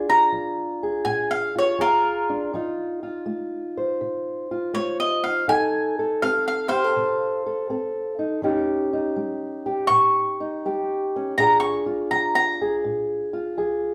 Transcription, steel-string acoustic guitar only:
0.00 0.27 A#2 medium
0.00 2.28 D4 medium
0.00 0.82 G#4 medium
0.10 1.55 F4 medium
0.32 1.01 F3 medium
0.83 1.78 G#4 medium
1.05 1.74 A#2 medium
1.56 2.55 F4 medium
1.78 2.48 F3 medium
1.78 2.50 G#4 medium
2.29 2.51 D4 medium
2.54 3.22 F3 medium
2.54 5.25 D#4 medium
2.54 3.02 F4 medium
3.03 4.50 F4 medium
3.26 3.95 A3 medium
3.77 4.74 C5 medium
4.01 4.70 C3 medium
4.51 5.46 F4 medium
4.73 5.43 A3 medium
4.73 5.46 C5 medium
5.25 5.49 D#4 medium
5.48 6.17 F3 medium
5.48 8.18 D#4 medium
5.48 5.98 A4 medium
5.99 6.70 A4 medium
6.23 6.91 C4 medium
6.71 6.84 G4 medium
6.84 7.45 A4 medium
6.96 7.65 C3 medium
7.46 7.69 A4 medium
7.70 8.38 C4 medium
7.70 8.40 A4 medium
8.19 8.40 D#4 medium
8.42 9.11 D#3 medium
8.42 11.13 C#4 medium
8.42 8.92 D#4 medium
8.42 9.65 G4 medium
8.93 10.39 D#4 medium
9.16 9.85 G3 medium
9.66 10.63 G4 medium
9.89 10.58 A#2 medium
10.40 11.34 D#4 medium
10.65 11.33 G3 medium
10.65 11.38 G4 medium
11.16 11.35 C#4 medium
11.38 12.06 A#2 medium
11.38 13.94 D4 medium
11.38 11.86 F4 medium
11.38 12.61 G#4 medium
11.86 13.33 F4 medium
12.12 12.79 F3 medium
12.61 13.58 G#4 medium
12.84 13.52 A#2 medium
13.33 13.94 F4 medium
13.57 13.94 F3 medium
13.57 13.94 G#4 medium

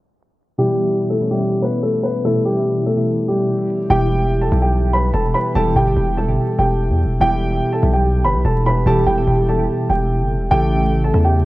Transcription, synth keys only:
0.58 1.04 B2 medium
0.58 1.04 E3 medium
0.58 1.04 G3 medium
0.58 1.05 E4 loud
1.20 1.28 B2 medium
1.20 1.28 E3 medium
1.20 1.29 G3 medium
1.20 1.29 C#4 medium
1.31 1.54 B2 medium
1.31 1.54 E3 medium
1.31 1.54 G3 medium
1.31 1.54 E4 medium
1.61 2.07 B2 medium
1.61 2.07 E3 medium
1.61 2.08 G3 medium
1.61 2.08 A3 medium
2.24 2.47 B2 medium
2.24 2.47 E3 medium
2.24 2.47 G3 medium
2.24 2.48 E4 loud
2.55 2.85 B2 medium
2.55 2.86 E3 medium
2.55 2.86 G3 medium
2.55 2.86 E4 medium
2.96 3.57 B2 medium
2.96 3.57 E3 medium
2.96 3.57 G3 medium
2.96 3.58 E4 medium
3.89 4.35 B2 loud
3.89 4.35 E3 medium
3.89 4.35 G3 loud
3.89 4.35 E4 medium
3.89 4.36 G4 loud
4.51 5.12 B2 medium
4.51 5.12 E3 medium
4.51 5.12 G3 medium
4.51 5.13 E4 medium
4.51 5.13 G4 medium
5.34 5.49 B2 medium
5.34 5.49 E3 medium
5.34 5.50 G3 medium
5.34 5.50 E4 medium
5.34 5.50 G4 medium
5.55 5.78 B2 loud
5.55 5.78 E3 medium
5.55 5.78 G3 medium
5.55 5.78 E4 medium
5.55 5.78 G4 loud
5.86 6.09 B2 medium
5.86 6.09 E3 medium
5.86 6.09 G3 medium
5.86 6.09 E4 medium
5.86 6.10 G4 medium
6.16 6.24 B2 medium
6.16 6.25 E3 medium
6.16 6.25 G3 medium
6.16 6.25 E4 medium
6.16 6.25 A4 medium
6.27 6.88 B2 medium
6.27 6.88 E3 medium
6.27 6.88 G3 medium
6.27 6.88 E4 medium
6.27 6.89 G4 medium
7.20 7.66 B2 loud
7.20 7.66 E3 medium
7.20 7.66 G3 medium
7.20 7.66 E4 medium
7.20 7.67 G4 loud
7.82 8.43 B2 medium
7.82 8.43 E3 medium
7.82 8.43 G3 medium
7.82 8.44 E4 medium
7.82 8.44 G4 medium
8.65 8.80 B2 medium
8.65 8.81 E3 medium
8.65 8.81 G3 medium
8.65 8.81 E4 medium
8.65 8.81 G4 medium
8.86 9.09 B2 loud
8.86 9.09 E3 medium
8.86 9.09 G3 medium
8.86 9.09 E4 medium
8.86 9.09 G4 loud
9.16 9.39 B2 medium
9.16 9.40 E3 medium
9.16 9.40 G3 medium
9.16 9.40 E4 medium
9.16 9.40 A4 medium
9.48 9.56 B2 medium
9.48 9.56 E3 medium
9.48 9.56 G3 medium
9.48 9.56 E4 medium
9.48 9.56 G4 medium
9.58 10.19 B2 medium
9.58 10.19 E3 medium
9.58 10.19 G3 medium
9.58 10.19 E4 medium
9.58 10.19 G4 medium
10.51 10.97 C#3 loud
10.51 10.97 E3 loud
10.51 10.97 A3 medium
10.51 10.97 E4 medium
10.51 10.98 A4 loud
11.13 11.45 C#3 medium
11.13 11.45 E3 medium
11.13 11.45 A3 medium
11.13 11.45 E4 medium
11.13 11.45 A4 medium

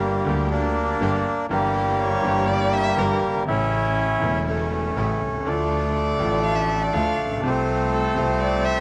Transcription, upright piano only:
0.00 0.23 G1 loud
0.00 0.23 G2 medium
0.00 0.22 D3 medium
0.00 0.22 G3 medium
0.00 0.23 A#3 medium
0.00 0.24 G4 medium
0.25 0.97 D2 medium
0.25 0.97 D3 medium
0.25 0.96 G3 medium
0.25 0.97 A#3 medium
0.29 0.98 G4 medium
1.01 1.22 G1 loud
1.01 1.22 G2 loud
1.01 1.21 D3 medium
1.01 1.22 G3 medium
1.01 1.22 A#3 medium
1.01 1.22 G4 medium
1.49 2.20 G1 medium
1.49 2.20 G2 medium
1.49 2.20 E3 medium
1.49 2.20 G3 medium
1.49 2.21 A#3 medium
1.49 2.21 G4 medium
2.22 2.94 G1 loud
2.22 2.94 G2 medium
2.22 2.93 E3 medium
2.22 2.93 G3 medium
2.22 2.95 A#3 medium
2.22 2.95 G4 medium
2.96 3.18 G1 medium
2.96 3.18 G2 medium
2.96 3.18 E3 medium
2.96 3.18 G3 medium
2.96 3.18 A#3 medium
2.96 3.18 G4 medium
3.29 3.35 F#1 medium
3.35 3.41 G1 medium
3.40 3.47 G#1 medium
3.45 4.18 A1 medium
3.45 4.18 A2 medium
3.45 4.17 C#3 medium
3.45 4.18 E3 medium
3.45 4.18 A3 medium
3.50 4.19 E4 medium
4.19 4.93 E1 medium
4.19 4.93 E2 medium
4.19 4.92 C#3 medium
4.19 4.92 E3 medium
4.19 4.93 A3 medium
4.24 4.94 E4 medium
4.96 5.17 A1 medium
4.96 5.18 A2 medium
4.96 5.17 C#3 medium
4.96 5.18 E3 medium
4.96 5.17 A3 medium
4.96 5.18 E4 medium
5.27 5.34 B1 soft
5.33 5.40 C2 medium
5.40 5.46 C#2 medium
5.45 6.17 D2 medium
5.45 6.15 D3 medium
5.45 6.16 F3 medium
5.45 6.17 A3 medium
5.45 6.18 F4 medium
6.17 6.90 A1 medium
6.17 6.91 A2 medium
6.17 6.89 D3 medium
6.17 6.90 F3 medium
6.17 6.91 A3 medium
6.21 6.91 F4 medium
6.93 7.15 D2 medium
6.93 7.15 D3 medium
6.93 7.15 F3 medium
6.93 7.15 A3 medium
6.93 7.15 F4 medium
7.25 7.31 A1 soft
7.31 7.38 A#1 medium
7.37 7.43 B1 medium
7.42 8.13 C2 medium
7.42 8.13 C3 medium
7.42 8.13 F3 medium
7.42 8.13 A3 medium
7.42 8.14 F4 medium
8.15 8.80 C2 medium
8.15 8.16 C3 medium
8.15 8.80 C3 loud
8.15 8.80 F3 medium
8.15 8.80 A3 medium
8.19 8.80 F4 medium

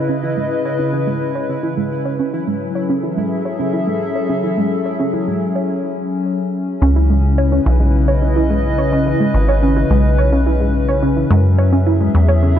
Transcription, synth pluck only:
0.09 0.16 C#4 medium
0.23 0.35 E4 medium
0.37 0.44 G#3 medium
0.65 0.78 C#5 medium
0.79 0.86 C#4 medium
0.93 1.05 E4 medium
1.07 1.14 G#3 medium
1.35 1.49 C#5 medium
1.49 1.56 C#4 medium
1.63 1.75 E4 medium
1.77 1.84 G#3 medium
2.05 2.19 C#5 medium
2.19 2.26 C#4 medium
2.33 2.45 E4 medium
2.47 2.54 G#3 medium
2.75 2.89 C#5 medium
2.89 2.96 C#4 medium
3.03 3.15 E4 medium
3.17 3.24 G#3 medium
3.45 3.59 C#5 medium
3.59 3.66 C#4 medium
3.73 3.85 E4 medium
3.87 3.94 G#3 medium
4.15 4.29 C#5 medium
4.29 4.36 C#4 medium
4.44 4.55 E4 medium
4.57 4.64 G#3 medium
4.86 4.99 C#5 medium
5.00 5.06 C#4 medium
5.14 5.25 E4 medium
5.28 5.34 G#3 medium
5.56 5.69 C#5 medium
6.82 6.89 C#4 medium
6.96 7.07 E4 medium
7.10 7.17 G#3 medium
7.38 7.51 C#5 medium
7.52 7.59 C#4 medium
7.66 7.77 E4 medium
7.80 7.87 G#3 medium
8.08 8.21 C#5 medium
8.22 8.29 C#4 medium
8.36 8.48 E4 medium
8.50 8.57 G#3 medium
8.78 8.92 C#5 medium
8.92 8.99 C#4 medium
9.07 9.18 E4 medium
9.20 9.27 G#3 medium
9.48 9.62 C#5 medium
9.62 9.69 C#4 medium
9.77 9.88 E4 medium
9.91 9.97 G#3 medium
10.18 10.32 C#5 medium
10.32 10.39 C#4 medium
10.47 10.58 E4 medium
10.60 10.67 G#3 medium
10.88 11.02 C#5 medium
11.02 11.09 C#4 medium
11.16 11.28 E4 medium
11.30 11.37 G#3 medium
11.58 11.72 C#5 medium
11.73 11.79 C#4 medium
11.87 11.98 E4 medium
12.01 12.07 G#3 medium
12.29 12.42 C#5 medium
12.43 12.49 C#4 medium

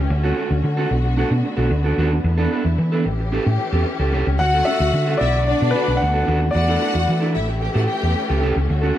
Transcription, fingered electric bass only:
0.10 0.31 D2 loud
0.51 0.61 D2 medium
0.64 0.85 D3 medium
0.91 1.23 B1 loud
1.31 1.41 B2 medium
1.58 1.68 B1 medium
1.71 1.92 D2 medium
1.98 2.19 D#2 medium
2.24 2.46 E2 loud
2.65 2.75 E2 medium
2.78 3.07 E3 medium
3.06 3.38 A1 medium
3.46 3.57 A2 medium
3.73 3.83 E2 medium
3.99 4.14 C#2 medium
4.14 4.24 C2 medium
4.27 4.37 C#2 medium
4.40 4.61 D2 loud
4.80 4.91 D2 medium
4.93 5.15 D3 medium
5.21 5.53 B1 medium
5.62 5.72 B2 medium
5.88 5.98 B1 medium
6.02 6.23 D2 loud
6.28 6.49 D#2 medium
6.55 6.76 E2 medium
6.95 7.05 E2 medium
7.09 7.38 E3 loud
7.36 7.68 A1 medium
7.75 7.86 A2 loud
8.03 8.13 E2 medium
8.30 8.43 C#2 medium
8.43 8.53 C2 medium
8.56 8.67 C#2 medium
8.70 8.91 D2 loud

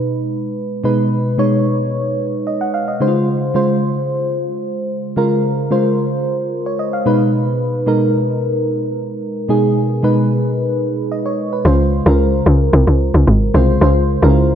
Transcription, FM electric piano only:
0.00 0.84 B2 medium
0.00 0.84 G#3 medium
0.00 0.85 D#4 medium
0.00 0.85 B4 loud
0.84 1.28 B2 medium
0.84 1.28 G#3 medium
0.84 1.28 D#4 medium
0.84 1.28 B4 loud
1.38 2.25 B2 medium
1.38 2.25 G#3 medium
1.38 2.25 D#4 medium
1.38 2.25 C#5 loud
2.47 2.60 D#5 medium
2.61 2.73 F#5 medium
2.74 2.87 F5 medium
2.88 3.13 D#5 medium
3.00 3.44 C#3 medium
3.00 3.44 G#3 medium
3.00 3.07 D#4 medium
3.00 3.45 C5 medium
3.08 3.48 F4 medium
3.54 4.41 C#3 medium
3.54 4.41 G#3 medium
3.54 4.42 F4 medium
3.54 4.42 C5 medium
5.16 5.60 C#3 medium
5.16 5.60 G#3 medium
5.16 5.61 F4 medium
5.16 5.61 A#4 loud
5.70 6.57 C#3 medium
5.70 6.57 G#3 medium
5.70 6.58 F4 medium
5.70 6.52 C5 medium
6.66 6.78 C#5 medium
6.79 6.92 D#5 medium
6.93 7.19 F5 medium
7.05 7.71 B2 medium
7.05 7.71 G#3 medium
7.05 7.71 D#4 medium
7.05 7.72 B4 loud
7.86 8.73 B2 medium
7.86 8.74 G#3 medium
7.86 8.74 D#4 medium
7.86 8.74 A#4 medium
9.49 9.92 B2 medium
9.49 9.93 G#3 medium
9.49 9.93 D#4 medium
9.49 9.93 G#4 medium
10.03 10.90 B2 medium
10.03 10.90 G#3 medium
10.03 10.90 D#4 medium
10.03 10.90 B4 loud
11.12 11.25 D#5 medium
11.26 11.51 C#5 medium
11.53 11.78 B4 medium
11.65 11.98 C#3 medium
11.65 11.98 G#3 medium
11.65 11.98 F4 medium
11.65 11.99 C5 loud
12.06 12.92 C#3 medium
12.06 12.93 G#3 medium
12.06 12.93 F4 medium
12.06 12.93 A#4 medium
13.54 13.76 C#3 medium
13.54 13.76 G#3 medium
13.54 13.77 F4 medium
13.54 13.77 C5 loud
13.81 14.14 C#3 medium
13.81 14.14 G#3 medium
13.81 14.14 F4 medium
13.81 14.15 C5 loud
14.22 14.55 C#3 medium
14.22 14.55 G#3 medium
14.22 14.29 E4 medium
14.22 14.55 A#4 loud
14.30 14.55 F4 medium

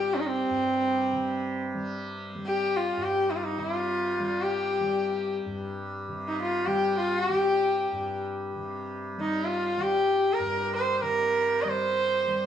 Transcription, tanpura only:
0.00 0.49 G2 soft
0.00 1.12 C3 soft
0.00 1.74 G3 soft
0.50 2.96 G2 soft
1.12 3.57 C3 medium
1.74 2.35 G3 medium
2.35 4.20 G3 soft
2.97 5.45 G2 soft
3.57 6.08 C3 soft
4.20 4.80 G3 soft
4.80 6.67 G3 soft
5.46 7.92 G2 medium
6.08 8.55 C3 medium
6.67 7.29 G3 medium
7.29 9.18 G3 soft
7.92 10.39 G2 medium
8.55 11.01 C3 soft
9.18 9.77 G3 medium
9.77 11.65 G3 medium
10.39 12.46 G2 medium
11.01 12.46 C3 medium
11.65 12.27 G3 medium
12.27 12.46 G3 medium

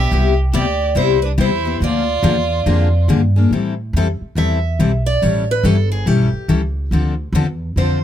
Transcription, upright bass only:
0.11 0.52 C2 medium
0.53 0.95 D2 loud
0.95 1.37 C2 medium
1.38 1.79 E2 medium
1.80 2.22 D2 medium
2.23 2.64 E2 loud
2.66 3.07 F2 medium
3.08 3.50 G2 medium
3.51 3.92 A2 medium
3.93 4.18 F2 medium
4.21 muted upright bass stroke soft
4.35 4.77 E2 medium
4.79 5.20 B1 medium
5.22 5.63 A1 medium
5.63 6.05 G1 loud
6.06 6.31 B1 medium
6.32 muted upright bass stroke soft
6.48 6.90 C#2 medium
6.91 7.32 D2 medium
7.33 7.75 E2 medium
7.76 8.04 F2 medium

